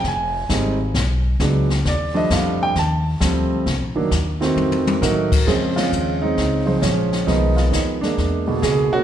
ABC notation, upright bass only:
X:1
M:4/4
L:1/8
Q:"Swing" 1/4=133
K:Bbm
V:1 name="Upright bass" clef=bass
F,,,2 A,,,2 =B,,,2 ^C,,2 | E,,2 F,,2 E,,2 =D,,2 | (3C,, B,,, G,,, E,,2 F,,2 =A,,2 | F,,2 E,,2 D,,2 B,,,2 |
_C,,2 E,,2 =E,,2 D,, z |]